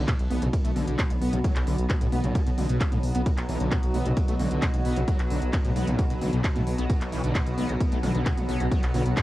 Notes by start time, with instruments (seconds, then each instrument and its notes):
Already playing: synth drone B2 F#3, ambient pad B3 F#4
0.08 acid bass B2, kick, clap, closed hi-hat, ride
0.18 detuned saw bass B1, ambient pad B5, closed hi-hat
0.30 detuned saw bass B1, acid bass B3, mid tom, open hi-hat
0.42 detuned saw bass B1, acid bass A2, ambient pad F#5, closed hi-hat
0.53 kick, closed hi-hat, ride
0.65 detuned saw bass B1, acid bass A3, closed hi-hat
0.76 detuned saw bass B1, acid bass D3, mid tom, open hi-hat
0.87 detuned saw bass B1, acid bass D3, closed hi-hat
0.99 acid bass B2, kick, clap, closed hi-hat, ride
1.10 detuned saw bass B1, closed hi-hat, mid tom
1.21 detuned saw bass B1, acid bass B3, open hi-hat
1.33 detuned saw bass B1, acid bass A2, closed hi-hat
1.44 acid bass F#3, kick, closed hi-hat, ride
1.56 detuned saw bass B1, clap, closed hi-hat
1.67 detuned saw bass B1, acid bass D3, open hi-hat
1.78 detuned saw bass B1, closed hi-hat
1.90 acid bass B2, kick, clap, closed hi-hat, ride
2.01 detuned saw bass B1, acid bass A2, closed hi-hat
2.12 detuned saw bass B1, acid bass B3, mid tom, open hi-hat
2.24 detuned saw bass B1, acid bass A2, closed hi-hat
2.35 acid bass A3, kick, closed hi-hat, ride
2.47 detuned saw bass B1, acid bass B2, closed hi-hat
2.58 detuned saw bass B1, acid bass D3, mid tom, open hi-hat
2.69 detuned saw bass B1, acid bass B2, closed hi-hat
2.81 kick, clap, closed hi-hat, ride
2.92 detuned saw bass B1, acid bass A2, closed hi-hat, mid tom
3.03 detuned saw bass B1, open hi-hat
3.15 detuned saw bass B1, acid bass B3, closed hi-hat
3.26 acid bass B2, kick, closed hi-hat, ride
3.37 detuned saw bass B1, clap, closed hi-hat
3.49 detuned saw bass B1, acid bass E3, open hi-hat
3.60 detuned saw bass B1, acid bass D3, closed hi-hat
3.71 acid bass B2, kick, clap, closed hi-hat, ride
3.83 detuned saw bass B1, closed hi-hat
3.94 detuned saw bass B1, acid bass B3, mid tom, open hi-hat
4.06 detuned saw bass B1, acid bass A2, closed hi-hat
4.17 kick, closed hi-hat, ride
4.28 detuned saw bass B1, acid bass A3, closed hi-hat
4.40 detuned saw bass B1, acid bass D3, mid tom, open hi-hat
4.51 detuned saw bass B1, acid bass D3, closed hi-hat
4.62 acid bass B2, kick, clap, closed hi-hat, ride
4.74 detuned saw bass B1, closed hi-hat, mid tom
4.85 detuned saw bass B1, acid bass B3, open hi-hat
4.97 detuned saw bass B1, acid bass A2, closed hi-hat
5.08 acid bass F#3, kick, closed hi-hat, ride
5.19 detuned saw bass B1, clap, closed hi-hat
5.30 detuned saw bass B1, acid bass D3, open hi-hat
5.42 detuned saw bass B1, closed hi-hat
5.53 acid bass B2, kick, clap, closed hi-hat, ride
5.65 detuned saw bass B1, acid bass A2, closed hi-hat
5.76 detuned saw bass B1, acid bass B3, mid tom, open hi-hat
5.87 detuned saw bass B1, acid bass A2, closed hi-hat
5.99 acid bass A3, kick, closed hi-hat, ride
6.10 detuned saw bass B1, acid bass B2, closed hi-hat
6.21 detuned saw bass B1, acid bass D3, mid tom, open hi-hat
6.33 detuned saw bass B1, acid bass B2, closed hi-hat
6.44 kick, clap, closed hi-hat, ride
6.56 detuned saw bass B1, acid bass A2, closed hi-hat, mid tom
6.67 detuned saw bass B1, open hi-hat
6.78 detuned saw bass B1, acid bass B3, closed hi-hat
6.90 acid bass B2, kick, closed hi-hat, ride
7.01 detuned saw bass B1, clap, closed hi-hat
7.12 detuned saw bass B1, acid bass E3, open hi-hat
7.24 detuned saw bass B1, acid bass D3, closed hi-hat
7.35 acid bass B2, kick, clap, closed hi-hat, ride
7.47 detuned saw bass B1, closed hi-hat
7.58 detuned saw bass B1, acid bass B3, mid tom, open hi-hat
7.69 detuned saw bass B1, acid bass A2, closed hi-hat
7.81 kick, closed hi-hat, ride
7.92 detuned saw bass B1, acid bass A3, closed hi-hat
8.03 detuned saw bass B1, acid bass D3, synth stab F#3 B3 F#4, mid tom, open hi-hat
8.15 detuned saw bass B1, acid bass D3, closed hi-hat
8.26 acid bass B2, kick, clap, closed hi-hat, ride
8.38 detuned saw bass B1, closed hi-hat, mid tom
8.49 detuned saw bass B1, synth stab F#3 B3 F#4, acid bass B3, open hi-hat
8.60 detuned saw bass B1, acid bass A2, closed hi-hat
8.72 acid bass F#3, kick, closed hi-hat, ride
8.83 detuned saw bass B1, clap, closed hi-hat
8.94 detuned saw bass B1, acid bass D3, synth stab F#3 B3 F#4, open hi-hat
9.06 detuned saw bass B1, closed hi-hat
9.17 acid bass B2, kick, clap, closed hi-hat, ride